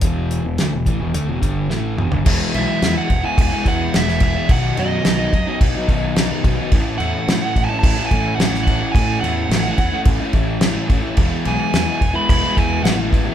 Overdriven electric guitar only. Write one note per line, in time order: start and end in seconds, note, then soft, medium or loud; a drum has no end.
0.03 0.45 E2 medium
0.03 0.45 B2 loud
0.03 0.45 E3 medium
0.46 0.60 E2 medium
0.46 0.60 B2 medium
0.60 0.73 D3 medium
0.60 0.73 A3 loud
0.74 0.87 E2 medium
0.74 0.87 B2 medium
0.88 1.00 A2 medium
0.88 1.01 E3 medium
1.01 1.14 E2 medium
1.01 1.13 B2 medium
1.14 1.28 D3 medium
1.14 1.28 A3 medium
1.28 1.41 E2 medium
1.28 1.41 B2 medium
1.42 1.70 G2 medium
1.42 1.69 D3 medium
1.42 1.69 G3 medium
1.70 1.97 A2 medium
1.70 1.97 E3 medium
1.70 1.98 A3 medium
1.97 2.11 E2 medium
1.97 2.11 B2 medium
2.11 2.25 G2 medium
2.11 2.25 D3 medium
2.25 2.53 E3 loud
2.25 2.54 G#3 loud
2.25 2.56 B3 loud
2.25 2.55 E4 loud
2.55 3.09 E3 medium
2.55 2.96 G#3 medium
2.55 2.96 B3 medium
2.55 2.94 E4 medium
2.95 3.09 G#3 medium
2.95 3.10 B3 medium
2.95 3.09 E4 medium
3.10 muted overdriven electric guitar stroke soft
3.23 3.52 G#3 medium
3.23 3.51 B3 medium
3.23 3.51 E4 medium
3.52 3.65 G#3 medium
3.52 3.66 B3 medium
3.52 3.66 E4 medium
3.66 3.93 E3 medium
3.66 3.94 G#3 medium
3.66 3.94 B3 medium
3.66 3.95 E4 medium
3.94 4.20 E3 loud
3.94 4.08 G#3 loud
3.94 4.07 B3 loud
3.94 4.06 E4 loud
4.07 4.21 G#3 medium
4.07 4.21 B3 medium
4.07 4.22 E4 medium
4.22 4.48 E3 medium
4.22 4.35 G#3 medium
4.22 4.35 B3 medium
4.22 4.34 E4 medium
4.35 4.48 G#3 medium
4.35 4.48 B3 medium
4.35 4.48 E4 medium
4.49 5.05 B2 loud
4.49 4.76 D#3 loud
4.49 4.77 F#3 loud
4.49 4.77 B3 medium
4.49 4.78 D#4 loud
4.77 5.32 D#3 medium
4.77 5.19 F#3 medium
4.77 5.19 B3 medium
4.77 5.18 D#4 medium
5.19 5.33 F#3 medium
5.19 5.32 B3 medium
5.19 5.33 D#4 medium
5.33 muted overdriven electric guitar stroke soft
5.47 5.76 F#3 medium
5.47 5.75 B3 medium
5.47 5.74 D#4 medium
5.75 5.88 F#3 medium
5.75 5.89 B3 medium
5.75 5.89 D#4 medium
5.88 6.16 D#3 medium
5.88 6.16 F#3 medium
5.88 6.17 B3 medium
5.88 6.17 D#4 medium
6.16 6.58 B2 medium
6.16 6.44 D#3 loud
6.16 6.31 F#3 loud
6.16 6.30 B3 loud
6.16 6.29 D#4 loud
6.30 6.45 F#3 medium
6.30 6.45 B3 medium
6.30 6.46 D#4 medium
6.45 6.71 D#3 medium
6.45 6.60 F#3 medium
6.45 6.59 B3 medium
6.45 6.58 D#4 medium
6.59 6.72 F#3 medium
6.59 6.72 B3 medium
6.59 6.71 D#4 medium
6.73 8.40 A2 medium
6.73 6.98 E3 loud
6.73 6.99 A3 loud
6.73 7.00 C#4 loud
6.73 7.00 E4 loud
6.99 7.56 E3 medium
6.99 7.44 A3 medium
6.99 7.43 C#4 medium
6.99 7.42 E4 medium
7.42 7.56 A3 medium
7.42 7.57 C#4 medium
7.42 7.57 E4 medium
7.57 muted overdriven electric guitar stroke medium
7.69 7.99 A3 medium
7.69 7.97 C#4 medium
7.69 7.97 E4 medium
7.97 8.12 A3 medium
7.97 8.13 C#4 medium
7.97 8.14 E4 medium
8.13 8.40 E3 medium
8.13 8.40 A3 medium
8.13 8.41 C#4 medium
8.13 8.42 E4 medium
8.41 8.82 A2 loud
8.41 8.67 E3 medium
8.41 8.55 A3 loud
8.41 8.54 C#4 loud
8.41 8.53 E4 loud
8.54 8.67 A3 medium
8.54 8.67 C#4 medium
8.54 8.69 E4 medium
8.68 8.95 E3 medium
8.68 8.82 A3 medium
8.68 8.81 C#4 medium
8.68 8.81 E4 medium
8.81 8.95 A3 medium
8.81 8.95 C#4 medium
8.81 8.96 E4 medium
8.95 9.51 A2 loud
8.95 9.23 E3 loud
8.95 9.23 A3 loud
8.95 9.23 C#4 loud
8.95 9.25 E4 loud
9.23 9.79 E3 medium
9.23 9.66 A3 medium
9.23 9.65 C#4 medium
9.23 9.65 E4 medium
9.65 9.79 A3 medium
9.65 9.79 C#4 medium
9.65 9.80 E4 medium
9.79 muted overdriven electric guitar stroke soft
9.92 10.20 A3 medium
9.92 10.20 C#4 medium
9.92 10.18 E4 medium
10.20 10.33 A3 medium
10.20 10.34 C#4 medium
10.20 10.34 E4 medium
10.34 10.61 E3 medium
10.34 10.62 A3 medium
10.34 10.63 C#4 medium
10.34 10.62 E4 medium
10.62 11.04 A2 medium
10.62 10.87 E3 medium
10.62 10.76 A3 loud
10.62 10.75 C#4 loud
10.62 10.74 E4 loud
10.75 10.88 A3 medium
10.75 10.88 C#4 medium
10.75 10.89 E4 medium
10.89 11.15 E3 medium
10.89 11.04 A3 medium
10.89 11.03 C#4 medium
10.89 11.02 E4 medium
11.03 11.17 A3 medium
11.03 11.16 C#4 medium
11.03 11.16 E4 medium
11.17 11.45 E3 loud
11.17 11.45 G#3 loud
11.17 11.47 B3 loud
11.17 11.46 E4 loud
11.46 12.00 E3 medium
11.46 11.87 G#3 medium
11.46 11.87 B3 medium
11.46 11.85 E4 medium
11.86 12.00 G#3 medium
11.86 12.02 B3 medium
11.86 12.01 E4 medium
12.01 muted overdriven electric guitar stroke soft
12.14 12.45 G#3 medium
12.14 12.43 B3 medium
12.14 12.42 E4 medium
12.43 12.55 G#3 medium
12.43 12.56 B3 medium
12.43 12.56 E4 medium
12.56 12.81 E3 medium
12.56 12.82 G#3 medium
12.56 12.83 B3 medium
12.56 12.83 E4 medium
12.83 13.09 E3 loud
12.83 12.98 G#3 loud
12.83 12.97 B3 loud
12.83 12.96 E4 loud
12.97 13.10 G#3 medium
12.97 13.10 B3 medium
12.97 13.11 E4 medium
13.11 13.35 E3 medium
13.11 13.26 G#3 medium
13.11 13.25 B3 medium
13.11 13.23 E4 medium
13.25 13.35 G#3 medium
13.25 13.35 B3 medium
13.25 13.35 E4 medium